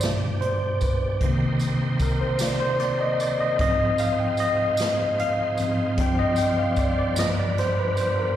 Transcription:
Already playing: G4 D5
0.01 B2 D4, snare, closed hi-hat, tambourine
0.05 G2 B2 D3
0.41 C5, closed hi-hat
0.81 B4, kick, closed hi-hat, tambourine
1.21 C3 D#3 A#3 C4 D#4 G4 C5, kick, closed hi-hat
1.25 A#3
1.59 closed hi-hat, tambourine
1.99 A#4, kick, closed hi-hat, tambourine
2.21 C5
2.39 D5, snare, closed hi-hat, tambourine
2.60 C5
2.80 D5, snare, closed hi-hat
3.01 D#5
3.20 D5, closed hi-hat, tambourine
3.40 D#5
3.56 G#2 G#3 D#4 F4, kick, closed hi-hat
3.61 F3 C4 D#5
3.98 F5, closed hi-hat, tambourine
4.20 G5
4.37 D#5, closed hi-hat, tambourine
4.77 snare, closed hi-hat, tambourine
5.19 F5, closed hi-hat
5.58 G#2 F3 C4, closed hi-hat, tambourine
5.97 G2 F3 G3 C4 D4 C5 G5, kick, closed hi-hat
6.19 D#5
6.36 G5, closed hi-hat, tambourine
6.59 F5
6.76 D5, kick, closed hi-hat, tambourine
6.99 D5
7.15 G2 F3 B3 B4, snare, closed hi-hat, tambourine
7.19 D#5
7.39 D5
7.58 C5, snare, closed hi-hat
7.80 B4
7.97 C5, closed hi-hat, tambourine
8.19 A#4

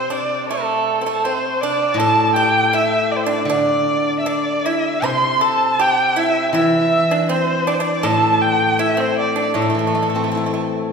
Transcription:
Already playing: C3 C5
0.10 D4 D5
0.49 A3 A4
1.01 C4
1.06 A3
1.24 C4 C5
1.61 D4 D5
1.94 A2 A5
2.00 A4
2.35 G4 G5
2.73 E4 E5
3.12 D5
3.17 C5
3.24 D4 D5
3.45 D3 D5
3.50 D4
4.20 E5
4.26 D4 D5
4.66 E4 E5
5.02 C3 C5 C6
5.41 A4 A5
5.79 G4 G5
6.16 E4 E5
6.53 E3 E4 E5
7.11 D4
7.29 C4 C5
7.67 D4 D5
7.74 C5
7.80 D4 D5
8.03 A2 A4 A5
8.42 G5
8.79 E4 E5
8.97 C4 C5
9.19 D5
9.36 D4
9.40 D5
9.54 A2 A3
9.59 A3 A4
9.70 A3
9.75 E3
9.79 A3
9.87 A3
9.95 A3
10.03 A3
10.10 A3
10.15 A3 C4
10.24 A3
10.32 A3 E4
10.37 A3
10.46 A3
10.54 A3

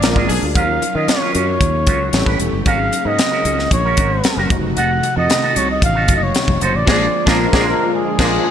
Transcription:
Already playing: D3 A#3 F4 D5
0.02 A#1 G#3 A#3 D4 F4 A#4, muted clean electric guitar stroke, snare, closed hi-hat, high conga
0.16 G#1 D4 G#4 A#4, kick, high conga
0.29 B1 F3 D4 G#4, muted clean electric guitar stroke, open hi-hat
0.42 D2, muted clean electric guitar stroke
0.54 D#2 D#3 F#3 C#4 D#4 F4 A#4 F5, kick, closed hi-hat, muted conga
0.69 muted clean electric guitar stroke
0.82 muted clean electric guitar stroke, closed hi-hat, muted conga
0.95 D#3 F#3 C#4 F4 D#5
1.08 C#5, muted clean electric guitar stroke, snare, closed hi-hat, high conga
1.21 F#3 C#4 F4
1.34 F#2 F#3 C#4 F4 C#5, closed hi-hat
1.47 muted clean electric guitar stroke
1.61 D#2, kick, closed hi-hat, muted conga
1.74 muted clean electric guitar stroke
1.87 C#2 F#3 C#4 F4, kick, closed hi-hat, muted conga
2.00 muted clean electric guitar stroke
2.13 A1 C#3 G3 A3 B3 C#4 E4 G4 A4, muted clean electric guitar stroke, snare, closed hi-hat, high conga
2.26 A1 C#4 G4 B4, kick, high conga
2.40 E1, closed hi-hat
2.53 F#1, muted clean electric guitar stroke
2.65 G#1 F#3 G#3 A#3 C#4 D#4 F#4 G#4 A#4 F5, kick, closed hi-hat, muted conga
2.79 muted clean electric guitar stroke
2.92 muted clean electric guitar stroke, closed hi-hat, muted conga
3.05 G#2 C#4 F#4 A#4 D#5
3.19 muted clean electric guitar stroke, snare, closed hi-hat, high conga
3.31 C#4 F#4 A#4
3.45 C#2 C#4 F#4 A#4, closed hi-hat
3.59 muted clean electric guitar stroke, snare
3.71 A#1 C#5, muted clean electric guitar stroke, kick, closed hi-hat
3.85 C#4 F#4 A#4
3.97 G#1 C#4 F#4 A#4, kick, closed hi-hat, muted conga
4.12 muted clean electric guitar stroke
4.24 muted clean electric guitar stroke, snare, closed hi-hat, high conga
4.37 F#1 C#4 F#4 A#4, high conga
4.49 F1 C3 D#3 F3 A3 D#4 F#4, muted clean electric guitar stroke, kick, closed hi-hat
4.63 F#1, muted clean electric guitar stroke
4.76 F1 D#4 F#4 A4 F#5, closed hi-hat, muted conga
4.91 muted clean electric guitar stroke
5.03 muted clean electric guitar stroke, closed hi-hat, muted conga
5.16 F2 D#4 F#4 A4 D#5
5.30 snare, closed hi-hat, high conga
5.43 D#4 F#4 A4
5.55 C2 D#4 F#4 A4 C#5, closed hi-hat
5.69 D#5, muted clean electric guitar stroke
5.82 A1 F5, muted clean electric guitar stroke, kick, closed hi-hat
5.95 D#4 F#4 A4
6.08 F#1 D#4 F#4 A4, kick, closed hi-hat, muted conga
6.16 D#5
6.22 C#5, muted clean electric guitar stroke
6.35 snare, closed hi-hat, high conga
6.48 F1, muted clean electric guitar stroke, kick, high conga
6.61 F#1 D#4 F#4 A4 C5, closed hi-hat
6.74 A1 D5, muted clean electric guitar stroke
6.86 A#1 D3 F3 G#3 A#3 D4 G#4 D5, kick, snare, crash
6.95 F4
7.26 A#1 F3 G#3 A#3 D4 G#4 A#4, kick, snare
7.34 F4
7.52 A#1 F3 G#3 A#3 D4 G#4, kick, snare
7.61 F4
7.68 A#4
7.95 G#4
8.18 A#1 F3 G#3 A#3 D4 F4 G#4, kick, snare, crash
8.26 D4
8.45 G#3

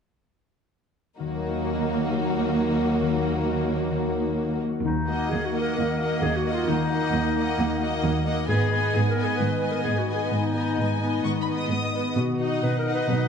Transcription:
1.19 D#2 D#3 F#3 A#3 D#4 F#4 A#4
1.34 A#3
1.49 D#4
1.65 F#4
1.80 A#4
1.96 F#4
2.11 D#3
2.26 A#3
2.41 D#4
2.56 F#4
2.71 A#4
2.86 F#4
3.01 D#3
3.16 A#3
3.31 D#4
3.46 F#4
3.61 A#4
3.76 F#4
3.91 D#3
4.07 A#3
4.21 D#4
4.37 F#4
4.53 A#4
4.68 F#4
4.84 D#2 D#3 D#4
5.07 A#3 F#4 D#5 F#5
5.30 D#2 D#4 G#4
5.46 F#4
5.52 A#3 A#4 D#5
5.56 F#5
5.61 A#4
5.75 D#2 A#3 A#4
5.99 A#3 F#4 D#5 F#5
6.22 D#2 D#4 G#4
6.37 F#4
6.44 A#3 A#4 D#5 F#5
6.53 F4
6.68 D#2 D#3 D#4
6.90 A#3 F#4 D#5 F#5
7.12 D#2 D#4
7.36 A#3 A#4 D#5 F#5
7.59 D#2 A#3
7.81 A#3 F#4 D#5 F#5
8.03 D#2 D#4
8.25 A#3 A#4 D#5 F#5
8.47 G#2 B3 G#4 D#5 G#5
8.71 B3 D#5 G#5
8.93 G#2 D#4 G#4
9.10 A#4
9.16 B3 D#5 G#5
9.24 G#4
9.37 G#2 D#3 B4
9.61 B3 G#4 D#5 G#5
9.71 A#4
9.83 G#2 D#4 G#4
9.99 F#4
10.07 B3 D#5 G#5
10.15 G#4
10.31 G#2 D#4
10.53 B3 G#4 D#5 G#5
10.77 G#2 D#4 G#5
11.00 B3 D#5
11.24 G#2 D#3 C#6
11.41 B5
11.47 B3 G#4 D#5
11.56 D#6
11.70 G#2 D#4 D#6
11.94 B3 G#4 D#5
12.15 B2 F#4
12.39 D#4 F#4 D#5 F#5
12.62 B2 D#4 B4
12.78 A#4
12.86 D#4 D#5 F#5
12.94 B4
13.08 B2 F#3 B4

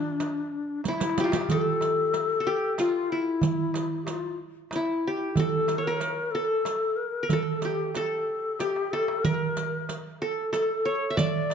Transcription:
Already playing: D4 F4 G4
0.20 riq, darbuka tek
0.84 E4, riq, darbuka tek
0.88 E4
0.93 darbuka ka
1.00 riq, darbuka tek
1.09 darbuka ka
1.18 G4, riq, darbuka tek
1.24 F4, darbuka ka
1.32 G4, riq, darbuka tek
1.41 darbuka ka
1.49 G#4 A4, riq, darbuka dum
1.62 A4
1.81 riq, darbuka tek
2.14 riq, darbuka tek
2.40 A4
2.47 G4
2.78 F4, riq, darbuka tek
3.10 E4
3.41 riq, darbuka dum
3.74 riq, darbuka tek
4.04 G4, riq, darbuka tek
4.09 F4
4.70 E4, riq, darbuka tek
4.76 E4
5.07 G4
5.34 A4, riq, darbuka dum
5.39 A4
5.68 riq, darbuka tek
5.78 C#5
5.83 A#4
5.87 A#4
6.01 riq, darbuka tek
6.31 A4
6.65 riq, darbuka tek
6.96 A#4
7.23 A#4
7.29 A4, riq, darbuka dum
7.33 A4
7.56 A4
7.61 G4, riq, darbuka tek
7.95 A4, riq, darbuka tek
8.27 darbuka ka
8.60 G4, riq, darbuka tek
8.76 darbuka ka
8.91 A4, darbuka tek
9.08 darbuka ka
9.24 A#4, riq, darbuka dum
9.57 riq, darbuka tek
9.89 riq, darbuka tek
10.21 A4
10.53 A4, riq, darbuka tek
10.85 C#5
11.10 E5
11.17 D5, riq, darbuka dum
11.50 riq, darbuka tek

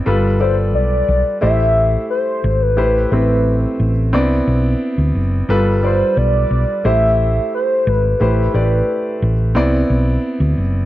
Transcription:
0.06 G1 G3 F4 A4 B4
0.39 G3 F4 A4 C5 D5
0.75 B1 D5
1.08 B1
1.41 A1 A3 E4 G4 C5 E5
2.10 C5
2.44 G#1
2.62 B4
2.76 A1 A3 E4 G4 B4 C5
3.12 A1 A3 C4 E4 G4 B4
3.80 A1
4.13 C2 B3 C4 D4 D5
4.20 E4
4.47 B1
4.98 D2
5.15 F#1
5.49 G1 G3 F4 A4 B4
5.82 G3 F4 A4 C5 D5
6.17 B1 D5
6.51 B1
6.84 A1 A3 E4 G4 C5 E5
7.55 C5
7.87 G#1 B4
8.05 B4
8.20 A1 A3 E4 G4 B4 C5
8.54 A1 A3 E4 G4 B4 D5
9.22 A1
9.55 C2 B3 C4 E4 D5
9.90 B1
10.40 D2
10.58 F#1

